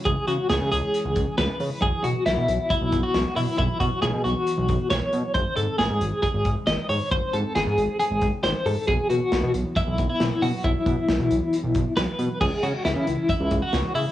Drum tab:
CC |--------|--------|--------|--------|
HH |xxxxxxxo|xxxxxxxo|xxxxxxxx|xxxxxxxo|
SD |--o---o-|--o---o-|--o---o-|--o---o-|
BD |o----o--|o---oo--|oo---o--|o---oo--|

CC |--------|--------|--------|x-------|
HH |xxxxxxxo|xxxxxxxo|xxxxxxxx|-xxxxxxo|
SD |--o---o-|--o---o-|--o---o-|--o---o-|
BD |o----o--|o---oo--|oo---o--|o---oo--|